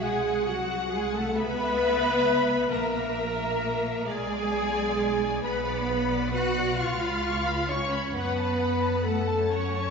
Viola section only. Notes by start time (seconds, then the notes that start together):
0.01 G#4
0.47 F#4
0.92 G#4
1.16 A4
1.38 B4
2.71 A#4
4.09 G#4
5.45 B4
6.34 F#5
6.79 F5
7.70 C#5
8.16 B4
9.05 A4
9.52 C#5